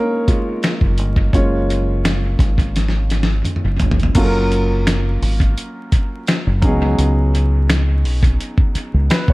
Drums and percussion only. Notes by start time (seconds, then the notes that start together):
0.28 kick, closed hi-hat
0.63 finger snap, snare, closed hi-hat
0.81 kick
0.98 closed hi-hat
1.16 kick
1.33 kick, closed hi-hat
1.70 closed hi-hat
2.05 finger snap, snare, closed hi-hat
2.39 kick, snare, closed hi-hat
2.58 kick, closed hi-hat
2.76 snare, closed hi-hat
2.88 snare
3.10 snare, closed hi-hat
3.23 snare
3.45 closed hi-hat, mid tom
3.56 mid tom
3.80 closed hi-hat, floor tom
3.91 floor tom
4.00 closed hi-hat, floor tom
4.15 kick, closed hi-hat, crash
4.52 closed hi-hat
4.87 finger snap, snare, closed hi-hat
5.22 open hi-hat
5.40 kick, closed hi-hat
5.58 closed hi-hat
5.92 kick, closed hi-hat
6.27 finger snap, snare, closed hi-hat
6.62 kick, closed hi-hat
6.98 closed hi-hat
7.35 closed hi-hat
7.70 finger snap, snare, closed hi-hat
8.05 open hi-hat
8.23 kick, closed hi-hat
8.40 closed hi-hat
8.58 kick
8.75 closed hi-hat
9.10 finger snap, snare, closed hi-hat
9.28 kick